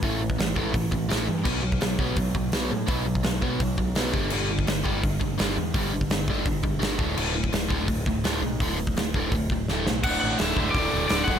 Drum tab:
CC |----------------|x---------------|----------------|x---------------|
HH |o---o---o---o---|----o---o---o---|o---o---o---o---|----o---o---o---|
SD |----o-------o---|----o-------o---|----o-------o---|----o-------o---|
BD |o--o--o-o-o-----|o--o--o-o-o-----|o--o--o-o-o---o-|---o--o-o-o-----|

CC |----------------|x---------------|----------------|x---------------|
HH |o---o---o---o---|----o---o---o---|o---o---o-------|----o---o---o---|
SD |----o-------o---|----o-------o---|----o-------o-o-|----o-------o---|
BD |o--o--o-o-o---o-|---o--o-o-o-----|o--o--o-o-o-----|o-----o-o-----o-|